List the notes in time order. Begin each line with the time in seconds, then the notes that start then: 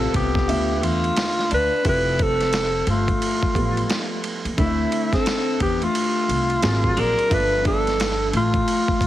Already playing: C3 G3 A3 C4 F4 A4
0.13 C2 B3 G4, kick, ride
0.35 kick, snare
0.47 D2 D3 B3 F4 E5, ride
0.78 A3 B3 G4
0.83 E2 F4, ride
1.04 ride
1.16 snare, hi-hat pedal, ride
1.39 snare
1.51 D2 D4 B4, ride
1.84 F1 F3 G3 A3 E4 G4, kick, ride
1.89 B4
2.19 C4 A4, kick, ride
2.40 snare, ride
2.53 snare, hi-hat pedal, ride
2.87 G1 A3 F4, ride
3.08 kick, ride
3.22 ride
3.43 kick
3.55 A1 F3 G3 A3 B3, kick, ride
3.77 ride
3.90 snare, hi-hat pedal, ride
4.24 ride
4.45 D#2, ride
4.57 D2 D3 A3 C4 D4 E4, kick, ride
4.66 E5
4.92 ride
5.13 C4 A4, kick, snare, ride
5.26 snare, hi-hat pedal, ride
5.60 E2 B3 G4, kick, ride
5.82 A3 F4, ride
5.95 ride
6.29 C2, ride
6.50 ride
6.62 G#1 A#2 F#3 C4 G#4, snare, hi-hat pedal, ride
6.84 kick
6.97 A#1 D4 A#4, ride
7.19 ride
7.29 G1 F3 A3 D4 A4 B4 E5, kick, ride
7.37 B3
7.65 D4 A4, kick, ride
7.87 snare, ride
8.00 snare, hi-hat pedal, ride
8.33 A1 A3 F4, ride
8.54 kick, ride
8.68 ride
8.88 kick
9.01 B1, kick, ride